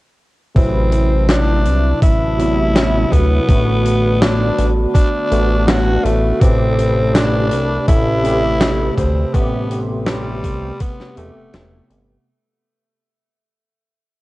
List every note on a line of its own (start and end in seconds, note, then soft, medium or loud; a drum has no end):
0.55 1.68 A1 loud
0.55 2.34 C3 medium
0.55 2.35 F#3 medium
0.55 1.29 C4 loud
0.55 2.36 E4 loud
0.55 6.37 F#4 medium
0.55 2.35 B4 medium
0.55 3.46 E5 medium
0.55 3.46 A5 medium
0.55 6.37 B5 medium
0.55 kick loud
0.55 closed hi-hat medium
0.92 closed hi-hat medium
1.29 1.99 D4 medium
1.29 snare loud
1.29 closed hi-hat medium
1.65 1.94 C2 medium
1.65 closed hi-hat medium
2.02 3.05 A1 loud
2.02 3.13 E4 loud
2.02 kick loud
2.02 closed hi-hat medium
2.37 3.44 C3 medium
2.37 3.44 F#3 medium
2.37 3.45 B3 medium
2.37 3.45 E4 loud
2.37 closed hi-hat medium
2.76 snare loud
2.76 closed hi-hat medium
3.12 3.40 D2 medium
3.12 4.23 B3 loud
3.12 kick medium
3.12 closed hi-hat medium
3.47 4.51 A1 loud
3.47 5.27 D3 medium
3.47 5.27 A3 medium
3.47 5.28 B3 medium
3.47 5.28 F#4 loud
3.47 6.38 D5 medium
3.47 12.23 A5 medium
3.47 kick loud
3.47 closed hi-hat medium
3.85 closed hi-hat medium
4.22 4.68 D4 loud
4.22 snare loud
4.22 closed hi-hat medium
4.58 4.86 A1 medium
4.58 closed hi-hat medium
4.94 5.70 D4 loud
4.94 kick loud
4.94 closed hi-hat medium
5.30 5.98 A1 loud
5.30 6.37 D3 medium
5.30 6.37 A3 medium
5.30 6.38 B3 medium
5.30 6.38 F#4 loud
5.30 closed hi-hat medium
5.68 6.06 F#4 loud
5.68 snare loud
5.68 closed hi-hat medium
6.04 6.33 A1 loud
6.04 6.42 A3 loud
6.04 closed hi-hat medium
6.40 7.53 A1 loud
6.40 8.20 C3 medium
6.40 8.20 A3 medium
6.40 7.16 C4 loud
6.40 12.23 G4 medium
6.40 8.21 G4 loud
6.40 8.21 B4 medium
6.40 9.31 B5 medium
6.40 kick loud
6.40 closed hi-hat medium
6.78 closed hi-hat medium
7.15 7.87 D4 loud
7.15 snare loud
7.15 closed hi-hat medium
7.51 7.79 C2 medium
7.51 closed hi-hat medium
7.88 8.91 A1 loud
7.88 8.94 E4 loud
7.88 kick loud
7.88 closed hi-hat medium
8.23 9.29 C3 medium
8.23 9.30 A3 medium
8.23 9.31 G4 loud
8.23 9.30 B4 medium
8.23 closed hi-hat medium
8.61 snare loud
8.61 closed hi-hat medium
8.97 9.26 D2 medium
8.97 9.35 C4 medium
8.97 kick medium
8.97 closed hi-hat medium
9.33 10.46 A1 loud
9.33 11.12 C3 medium
9.33 11.13 A3 medium
9.33 9.81 B3 loud
9.33 11.13 B3 medium
9.33 11.14 G4 loud
9.33 12.24 C6 medium
9.33 kick loud
9.33 closed hi-hat medium
9.71 closed hi-hat medium
10.07 10.83 G3 medium
10.07 snare loud
10.07 closed hi-hat medium
10.44 10.72 C2 medium
10.44 kick medium
10.44 closed hi-hat medium
10.80 11.19 B3 medium
10.80 kick loud
10.80 closed hi-hat medium
11.00 snare soft
11.16 11.31 E1 loud
11.16 12.22 C3 medium
11.16 12.22 A3 medium
11.16 11.91 A3 medium
11.16 12.23 B3 medium
11.16 12.23 G4 loud
11.16 closed hi-hat medium
11.36 11.50 E1 soft
11.53 11.81 E1 loud
11.53 snare loud
11.53 closed hi-hat medium
11.90 12.18 G1 loud
11.90 closed hi-hat medium